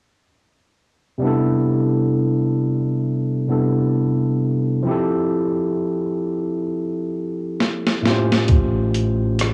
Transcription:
1.18 tine electric piano C3 G3 B3
1.23 tine electric piano D4 E4 A4
3.48 tine electric piano C3 G3 B3 D4 E4
3.52 tine electric piano A4
4.83 tine electric piano F3 C4
4.87 tine electric piano E4 G4
4.91 tine electric piano A4
7.60 snare
7.87 snare
8.02 tine electric piano A2 A3 C4, snare
8.07 tine electric piano F4 G4 C5
8.11 tine electric piano C#4
8.32 snare
8.48 fretless electric bass A1, kick, closed hi-hat
8.95 closed hi-hat
9.39 cross-stick, closed hi-hat

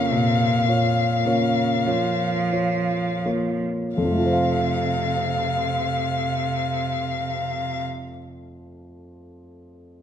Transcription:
Already playing: cello C#3, grand piano A#3 F4 C#5, violin F5
0.10 grand piano A#2, cello C3
0.66 cello A#2, grand piano F4 C#5
1.24 cello C#3, grand piano A#3 F4 C#5
1.86 cello F3, grand piano A#3 F4 C#5
2.52 grand piano F4 C#5
3.25 grand piano A#3 F4 C#5
3.96 grand piano F2, cello C3, violin F5
4.04 grand piano F3
4.11 grand piano A3
4.18 grand piano F4
4.26 grand piano C5
4.33 grand piano F5

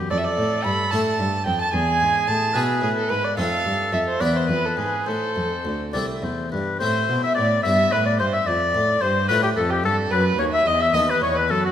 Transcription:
0.10 harpsichord F2, cello F2, oboe A4, violin D5
0.17 violin E5
0.24 violin D5
0.38 harpsichord A2, cello A2
0.64 harpsichord G2, cello G2, violin B5
0.91 cello A2, harpsichord A2 A3 D4 A4, violin A5
1.19 harpsichord G2, cello G2
1.46 harpsichord F2, cello F2, violin G5
1.61 violin A5
1.73 harpsichord E2, cello E2, oboe G#4, violin G#5
2.00 harpsichord G#2, cello G#2
2.28 harpsichord A2, cello A2, violin A5
2.53 harpsichord B2 B3 E4 G#4, cello B2, violin G#4, oboe B4
2.81 harpsichord A2, cello A2, violin G#4
2.97 violin A4
3.10 harpsichord G#2, cello G#2, violin B4
3.24 violin D5
3.37 harpsichord F2 A3 C4 A4, cello F2, oboe A4, violin F5
3.65 harpsichord G2, cello G2
3.93 cello F2, harpsichord F2, violin E5
4.08 violin C5
4.21 cello E2, harpsichord E2 B3 D4 E4, oboe B4, violin D5
4.36 violin C5
4.49 cello F2, harpsichord F2, violin B4
4.65 violin A4
4.77 harpsichord G#2, cello G#2, violin G#4
5.06 harpsichord A2, cello A2, violin A4, oboe C5
5.36 harpsichord F2, cello F2
5.65 harpsichord D2, cello D2
5.93 harpsichord C2 A3 C4 E4, cello C2, oboe D5
6.22 harpsichord E2, cello E2, oboe C5
6.51 harpsichord G2, cello G2, oboe B4
6.79 harpsichord A2 A3 C4 E4, cello A2, oboe C5, violin C5
7.09 harpsichord B2, cello B2
7.23 violin E5, oboe E5
7.35 harpsichord A2, cello A2, oboe D5, violin D5
7.63 cello G2, harpsichord G2 B3 E4, oboe E5, violin E5
7.92 cello A2, harpsichord A2, oboe B4, violin B4
8.05 violin D5, oboe D5
8.19 cello G2, harpsichord G2, violin C5, oboe C5
8.33 violin E5, oboe E5
8.46 cello F2, harpsichord F2, oboe D5, violin D5
8.74 cello A2, harpsichord A2
9.01 cello G2, harpsichord G2, violin C5, oboe C5
9.28 cello A2, harpsichord A2 A3 D4 F4, violin B4, oboe B4
9.42 violin G4, oboe G4
9.56 cello F2, harpsichord F2, violin A4, oboe A4
9.70 violin G4, oboe G4
9.84 harpsichord G2, cello G2, violin A4, oboe A4
10.10 cello F#2, harpsichord F#2, violin B4, oboe B4
10.38 cello D#2, harpsichord D#2, violin C#5, oboe C#5
10.52 violin E5, oboe E5
10.66 harpsichord E2, cello E2, violin D#5, oboe D#5
10.80 violin E5, oboe E5
10.93 cello D#2, harpsichord D#2 B3 D#4 A4, violin D#5, oboe D#5
11.08 violin B4, oboe B4
11.22 harpsichord E2, cello E2, violin C#5, oboe C#5
11.35 violin B4, oboe B4
11.49 harpsichord F#2, cello F#2, violin A4, oboe A4
11.64 violin F#4, oboe F#4

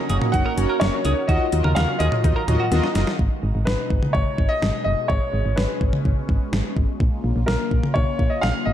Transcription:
Already playing: analog synth pad C#3 A#3 F#4, grand piano D#5
0.09 fm bass F#1, analog polysynth C#4 F#4 A#4 C#5, synth arpeggio sound D#4, clean electric guitar G#4, closed hi-hat
0.22 synth arpeggio sound F4, mid tom
0.32 fm bass F#1, analog polysynth C#4 F#4 A#4 C#5, synth arpeggio sound D#4, grand piano F#5, kick, closed hi-hat
0.45 synth arpeggio sound D#4, clean electric guitar A#4
0.57 fm bass F#1, analog polysynth C#4 F#4 A#4 C#5, synth arpeggio sound C#4, closed hi-hat
0.70 clean electric guitar A#4
0.80 fm bass F#1, synth arpeggio sound B3, analog polysynth C#4 F#4 A#4 C#5, grand piano C#5, snare, closed hi-hat
0.93 synth arpeggio sound C#4
1.05 fm bass C#2, analog polysynth C#4 F#4 A#4 C#5, synth arpeggio sound D#4, clean electric guitar G#4, closed hi-hat
1.27 fm bass D#2, analog synth pad D#3 F#3 F4, synth arpeggio sound D#4, analog polysynth F4 F#4 A#4 D#5, clean electric guitar F#4, grand piano D#5, kick, closed hi-hat
1.52 fm bass D#2, synth arpeggio sound D#4, analog polysynth F4 F#4 A#4 D#5, closed hi-hat
1.64 fm bass D#2, clean electric guitar A#4, mid tom
1.75 fm bass D#2, synth arpeggio sound B3, analog polysynth F4 F#4 A#4 F5, clean electric guitar A#4, grand piano F5, snare, closed hi-hat
1.88 synth arpeggio sound C#4
1.99 fm bass D#2, synth arpeggio sound D#4, analog polysynth F4 F#4 A#4 C#5, clean electric guitar G#4, grand piano D#5, closed hi-hat
2.12 synth arpeggio sound F4, mid tom
2.24 fm bass D#2, synth arpeggio sound D#4, analog polysynth F4 F#4 A#4 D#5, kick, closed hi-hat
2.36 synth arpeggio sound D#4, clean electric guitar A#4
2.48 fm bass D#2, synth arpeggio sound C#4, analog polysynth F4 F#4 A#4 D#5, closed hi-hat, mid tom
2.60 clean electric guitar F#4
2.72 fm bass D#2, synth arpeggio sound B3, analog polysynth F4 F#4 A#4 D#5, snare, closed hi-hat
2.83 synth arpeggio sound C#4, snare
2.95 fm bass F#1, synth arpeggio sound D#4, analog polysynth F4 F#4 A#4 D#5, snare, closed hi-hat
3.07 snare
3.19 fm bass G#1, analog synth pad B2 G#3 D#4, kick
3.43 fm bass G#1
3.55 fm bass G#1
3.65 fm bass G#1, grand piano B4, snare
3.90 fm bass G#1, kick
4.03 mid tom
4.13 fm bass G#1, grand piano C#5, kick
4.38 fm bass G#1, kick
4.49 grand piano D#5
4.62 fm bass G#1, snare
4.84 fm bass F#1, grand piano D#5
5.08 fm bass G#1, analog synth pad C#4, grand piano C#5, kick
5.34 fm bass G#1
5.45 fm bass G#1
5.56 fm bass G#1, grand piano B4, snare
5.81 fm bass G#1, kick
5.93 mid tom
6.05 fm bass G#1, kick
6.29 fm bass G#1, kick
6.53 fm bass G#1, snare
6.77 fm bass G#1, kick
7.00 fm bass A#1, analog synth pad C#3 A#3 F4, kick
7.24 fm bass A#1
7.36 fm bass A#1
7.46 fm bass A#1, grand piano A#4, snare
7.71 fm bass A#1, kick
7.83 mid tom
7.94 fm bass A#1, grand piano C#5, kick
8.19 fm bass A#1, kick
8.30 grand piano D#5
8.41 fm bass A#1, grand piano F5, snare
8.65 fm bass G#1, grand piano D#5

